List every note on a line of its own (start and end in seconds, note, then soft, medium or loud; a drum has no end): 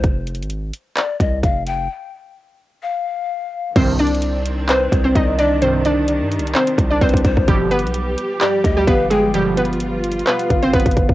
0.04 0.41 F1 loud
0.04 kick loud
0.04 closed hi-hat medium
0.27 closed hi-hat medium
0.35 closed hi-hat medium
0.39 0.72 G#1 loud
0.39 closed hi-hat medium
0.50 closed hi-hat medium
0.74 closed hi-hat medium
0.97 1.19 D5 medium
0.97 clap loud
0.97 closed hi-hat medium
1.20 1.42 C2 loud
1.20 1.42 D#5 medium
1.20 kick medium
1.20 closed hi-hat medium
1.43 1.88 F1 loud
1.43 1.65 F5 medium
1.43 kick loud
1.43 closed hi-hat medium
1.66 1.89 G5 medium
1.66 closed hi-hat medium
2.83 3.72 F5 medium
3.76 4.88 C2 loud
3.76 3.96 G2 loud
3.76 3.96 C3 loud
3.76 3.96 D#3 loud
3.76 3.96 C4 medium
3.76 3.96 C5 medium
3.76 kick loud
3.76 closed hi-hat medium
3.76 crash loud
3.99 4.65 D4 medium
3.99 4.65 D5 medium
3.99 closed hi-hat medium
4.07 closed hi-hat medium
4.15 closed hi-hat medium
4.22 closed hi-hat medium
4.46 closed hi-hat medium
4.69 5.03 C4 medium
4.69 4.91 B4 medium
4.69 5.03 C5 medium
4.69 clap loud
4.69 closed hi-hat medium
4.92 5.14 C2 loud
4.92 5.14 C5 medium
4.92 kick medium
4.92 closed hi-hat medium
5.04 5.14 C4 medium
5.04 5.14 C5 medium
5.15 6.22 C2 loud
5.15 5.36 D#4 medium
5.15 5.37 D5 medium
5.15 5.35 D#5 medium
5.15 kick loud
5.15 closed hi-hat medium
5.39 5.59 D4 medium
5.39 5.59 D5 medium
5.39 5.61 D#5 medium
5.39 closed hi-hat medium
5.62 5.82 G2 loud
5.62 5.82 C3 loud
5.62 5.82 D#3 loud
5.62 11.14 G3 medium
5.62 5.82 C4 medium
5.62 5.82 C5 medium
5.62 closed hi-hat medium
5.85 6.51 D4 medium
5.85 6.51 D5 medium
5.85 closed hi-hat medium
6.08 closed hi-hat medium
6.21 6.39 G2 loud
6.32 closed hi-hat medium
6.38 6.54 C2 loud
6.38 closed hi-hat medium
6.47 closed hi-hat medium
6.55 6.89 C4 medium
6.55 6.88 C5 medium
6.55 clap loud
6.55 closed hi-hat medium
6.67 closed hi-hat medium
6.78 7.00 C2 loud
6.78 kick medium
6.78 closed hi-hat medium
6.91 7.00 D4 medium
6.91 7.00 D5 medium
7.01 7.13 C2 loud
7.01 7.46 C4 medium
7.01 7.24 B4 medium
7.01 7.45 C5 medium
7.01 kick loud
7.01 closed hi-hat medium
7.09 closed hi-hat medium
7.14 7.24 C2 loud
7.14 kick medium
7.14 closed hi-hat medium
7.25 7.36 C2 loud
7.25 7.47 C5 medium
7.25 kick loud
7.25 closed hi-hat medium
7.37 7.48 C2 loud
7.37 kick medium
7.48 7.85 G1 loud
7.48 7.68 B2 loud
7.48 7.68 D3 medium
7.48 7.68 F3 loud
7.48 11.14 F3 medium
7.48 7.68 G3 medium
7.48 7.68 G4 medium
7.48 9.32 G4 medium
7.48 kick loud
7.48 closed hi-hat medium
7.71 8.37 B3 medium
7.71 8.37 B4 medium
7.71 closed hi-hat medium
7.79 closed hi-hat medium
7.84 8.16 B1 loud
7.84 closed hi-hat medium
7.94 closed hi-hat medium
8.18 closed hi-hat medium
8.41 8.75 G3 medium
8.41 8.74 G4 medium
8.41 8.63 D5 medium
8.41 clap loud
8.41 closed hi-hat medium
8.64 8.87 D2 loud
8.64 8.86 D#5 medium
8.64 kick medium
8.64 closed hi-hat medium
8.77 8.86 G3 medium
8.77 8.86 G4 medium
8.87 10.23 G1 loud
8.87 9.08 B3 medium
8.87 9.07 B4 medium
8.87 9.10 F5 medium
8.87 kick loud
8.87 closed hi-hat medium
9.10 9.31 G#3 medium
9.10 9.30 G#4 medium
9.10 9.33 G5 medium
9.10 closed hi-hat medium
9.34 9.54 B2 loud
9.34 9.54 D3 loud
9.34 9.54 F3 loud
9.34 9.54 G3 medium
9.34 11.14 F4 medium
9.34 9.54 G4 loud
9.34 closed hi-hat medium
9.57 10.23 B3 medium
9.57 10.23 B4 medium
9.57 closed hi-hat medium
9.65 closed hi-hat medium
9.73 closed hi-hat soft
9.80 closed hi-hat medium
10.04 closed hi-hat medium
10.12 closed hi-hat medium
10.19 closed hi-hat soft
10.27 10.61 B3 medium
10.27 10.61 B4 medium
10.27 11.14 F5 medium
10.27 clap loud
10.27 closed hi-hat medium
10.39 closed hi-hat medium
10.50 10.73 G1 loud
10.50 kick medium
10.50 closed hi-hat medium
10.63 10.72 C4 medium
10.63 10.72 C5 medium
10.63 closed hi-hat soft
10.74 10.85 G1 loud
10.74 10.94 B3 medium
10.74 10.93 B4 medium
10.74 kick loud
10.74 closed hi-hat medium
10.80 closed hi-hat medium
10.86 10.96 G1 loud
10.86 kick medium
10.86 closed hi-hat medium
10.91 closed hi-hat medium
10.97 11.09 G1 loud
10.97 kick loud
10.97 closed hi-hat medium
11.09 11.14 G1 loud
11.09 kick medium